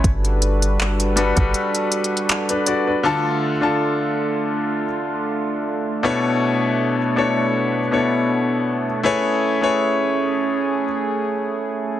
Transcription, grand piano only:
0, 0, Header, 1, 2, 480
1, 0, Start_track
1, 0, Tempo, 750000
1, 27, Time_signature, 4, 2, 24, 8
1, 7679, End_track
2, 0, Start_track
2, 0, Title_t, "Grand piano"
2, 0, Program_c, 0, 0
2, 0, Control_c, 0, 64, 127
2, 35, Control_c, 0, 64, 0
2, 144, Control_c, 0, 64, 127
2, 741, Note_on_c, 0, 55, 89
2, 744, Note_on_c, 0, 62, 82
2, 748, Note_on_c, 0, 66, 76
2, 752, Note_on_c, 0, 69, 77
2, 756, Note_on_c, 0, 71, 93
2, 850, Note_off_c, 0, 55, 0
2, 852, Note_off_c, 0, 62, 0
2, 854, Note_off_c, 0, 66, 0
2, 856, Note_off_c, 0, 69, 0
2, 858, Note_off_c, 0, 71, 0
2, 870, Note_on_c, 0, 55, 81
2, 875, Note_on_c, 0, 62, 72
2, 879, Note_on_c, 0, 66, 74
2, 882, Note_on_c, 0, 69, 69
2, 887, Note_on_c, 0, 71, 85
2, 1466, Note_off_c, 0, 62, 0
2, 1468, Note_off_c, 0, 66, 0
2, 1470, Note_off_c, 0, 69, 0
2, 1472, Note_off_c, 0, 71, 0
2, 1599, Note_on_c, 0, 71, 70
2, 1604, Note_on_c, 0, 62, 57
2, 1655, Note_off_c, 0, 55, 0
2, 1703, Note_off_c, 0, 71, 0
2, 1705, Note_off_c, 0, 62, 0
2, 1709, Note_on_c, 0, 74, 75
2, 1714, Note_on_c, 0, 66, 66
2, 1831, Note_off_c, 0, 74, 0
2, 1834, Note_off_c, 0, 66, 0
2, 1839, Note_on_c, 0, 71, 67
2, 1844, Note_on_c, 0, 62, 58
2, 1935, Note_off_c, 0, 62, 0
2, 1941, Note_on_c, 0, 50, 111
2, 1945, Note_on_c, 0, 62, 104
2, 1948, Note_on_c, 0, 65, 98
2, 1953, Note_on_c, 0, 69, 105
2, 1956, Control_c, 0, 64, 0
2, 1957, Note_on_c, 0, 81, 121
2, 2066, Note_off_c, 0, 71, 0
2, 2085, Control_c, 0, 64, 127
2, 2243, Note_off_c, 0, 50, 0
2, 2245, Note_off_c, 0, 62, 0
2, 2247, Note_off_c, 0, 65, 0
2, 2249, Note_off_c, 0, 69, 0
2, 2251, Note_off_c, 0, 81, 0
2, 2309, Note_on_c, 0, 50, 88
2, 2313, Note_on_c, 0, 62, 76
2, 2317, Note_on_c, 0, 65, 82
2, 2321, Note_on_c, 0, 69, 82
2, 2324, Note_on_c, 0, 81, 96
2, 3094, Note_off_c, 0, 50, 0
2, 3096, Note_off_c, 0, 62, 0
2, 3098, Note_off_c, 0, 65, 0
2, 3100, Note_off_c, 0, 69, 0
2, 3102, Note_off_c, 0, 81, 0
2, 3860, Note_on_c, 0, 47, 114
2, 3864, Note_on_c, 0, 59, 104
2, 3866, Note_on_c, 0, 62, 99
2, 3869, Note_on_c, 0, 64, 104
2, 3873, Note_on_c, 0, 69, 97
2, 3875, Control_c, 0, 64, 0
2, 3875, Note_on_c, 0, 73, 116
2, 3970, Control_c, 0, 64, 127
2, 4462, Note_off_c, 0, 47, 0
2, 4464, Note_off_c, 0, 59, 0
2, 4465, Note_off_c, 0, 62, 0
2, 4467, Note_off_c, 0, 64, 0
2, 4469, Note_off_c, 0, 69, 0
2, 4470, Note_off_c, 0, 73, 0
2, 4583, Note_on_c, 0, 47, 87
2, 4585, Note_on_c, 0, 59, 75
2, 4588, Note_on_c, 0, 62, 85
2, 4591, Note_on_c, 0, 64, 76
2, 4595, Note_on_c, 0, 69, 79
2, 4598, Note_on_c, 0, 73, 95
2, 4985, Note_off_c, 0, 47, 0
2, 4986, Note_off_c, 0, 59, 0
2, 4988, Note_off_c, 0, 62, 0
2, 4989, Note_off_c, 0, 64, 0
2, 4991, Note_off_c, 0, 69, 0
2, 4993, Note_off_c, 0, 73, 0
2, 5063, Note_on_c, 0, 47, 77
2, 5067, Note_on_c, 0, 59, 75
2, 5070, Note_on_c, 0, 62, 72
2, 5073, Note_on_c, 0, 64, 71
2, 5076, Note_on_c, 0, 69, 72
2, 5079, Note_on_c, 0, 73, 88
2, 5664, Note_off_c, 0, 47, 0
2, 5666, Note_off_c, 0, 59, 0
2, 5667, Note_off_c, 0, 62, 0
2, 5669, Note_off_c, 0, 64, 0
2, 5670, Note_off_c, 0, 69, 0
2, 5672, Note_off_c, 0, 73, 0
2, 5782, Note_on_c, 0, 57, 109
2, 5785, Note_on_c, 0, 64, 99
2, 5790, Note_on_c, 0, 68, 103
2, 5794, Note_on_c, 0, 71, 104
2, 5795, Control_c, 0, 64, 0
2, 5797, Note_on_c, 0, 73, 124
2, 5897, Control_c, 0, 64, 127
2, 6084, Note_off_c, 0, 57, 0
2, 6085, Note_off_c, 0, 64, 0
2, 6088, Note_off_c, 0, 68, 0
2, 6090, Note_off_c, 0, 71, 0
2, 6091, Note_off_c, 0, 73, 0
2, 6152, Note_on_c, 0, 57, 87
2, 6155, Note_on_c, 0, 64, 80
2, 6160, Note_on_c, 0, 68, 83
2, 6164, Note_on_c, 0, 71, 82
2, 6167, Note_on_c, 0, 73, 103
2, 6936, Note_off_c, 0, 57, 0
2, 6937, Note_off_c, 0, 64, 0
2, 6940, Note_off_c, 0, 68, 0
2, 6942, Note_off_c, 0, 71, 0
2, 6943, Note_off_c, 0, 73, 0
2, 7679, End_track
0, 0, End_of_file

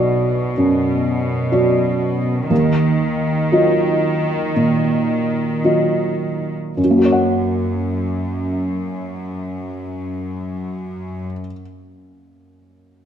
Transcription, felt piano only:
0, 0, Header, 1, 2, 480
1, 0, Start_track
1, 0, Key_signature, -6, "major"
1, 0, Tempo, 961538
1, 1249, Time_signature, 4, 2, 24, 8
1, 1249, Tempo, 1025641
1, 2209, Tempo, 1083032
1, 2689, Tempo, 1132075
1, 5833, End_track
2, 0, Start_track
2, 0, Title_t, "Felt piano"
2, 0, Program_c, 0, 0
2, 0, Control_c, 0, 64, 127
2, 0, Note_on_c, 0, 35, 44
2, 0, Note_on_c, 0, 54, 40
2, 0, Note_on_c, 0, 66, 41
2, 0, Note_on_c, 0, 74, 41
2, 263, Note_off_c, 0, 54, 0
2, 263, Note_off_c, 0, 66, 0
2, 265, Note_off_c, 0, 74, 0
2, 285, Note_on_c, 0, 42, 34
2, 746, Note_off_c, 0, 42, 0
2, 759, Note_on_c, 0, 54, 30
2, 760, Note_on_c, 0, 66, 30
2, 761, Note_on_c, 0, 74, 31
2, 1229, Note_off_c, 0, 54, 0
2, 1230, Note_off_c, 0, 66, 0
2, 1231, Note_off_c, 0, 74, 0
2, 1249, Note_on_c, 0, 39, 41
2, 1259, Control_c, 0, 64, 0
2, 1261, Note_off_c, 0, 35, 0
2, 1342, Control_c, 0, 64, 127
2, 1710, Note_off_c, 0, 39, 0
2, 1726, Note_on_c, 0, 54, 30
2, 1728, Note_on_c, 0, 65, 30
2, 1728, Note_on_c, 0, 75, 33
2, 2191, Note_off_c, 0, 54, 0
2, 2192, Note_off_c, 0, 65, 0
2, 2192, Note_off_c, 0, 75, 0
2, 2211, Note_on_c, 0, 46, 25
2, 2676, Note_off_c, 0, 46, 0
2, 2691, Note_on_c, 0, 65, 20
2, 2693, Note_on_c, 0, 54, 20
2, 2694, Note_on_c, 0, 75, 22
2, 3157, Note_off_c, 0, 65, 0
2, 3158, Note_off_c, 0, 54, 0
2, 3158, Note_off_c, 0, 75, 0
2, 3169, Note_on_c, 0, 42, 29
2, 3183, Control_c, 0, 64, 0
2, 3200, Note_on_c, 0, 54, 25
2, 3227, Note_on_c, 0, 58, 26
2, 3258, Note_on_c, 0, 66, 27
2, 3265, Control_c, 0, 64, 127
2, 3287, Note_on_c, 0, 73, 27
2, 3319, Note_on_c, 0, 78, 28
2, 5070, Note_off_c, 0, 42, 0
2, 5101, Note_off_c, 0, 54, 0
2, 5127, Note_off_c, 0, 58, 0
2, 5159, Note_off_c, 0, 66, 0
2, 5188, Note_off_c, 0, 73, 0
2, 5220, Note_off_c, 0, 78, 0
2, 5833, End_track
0, 0, End_of_file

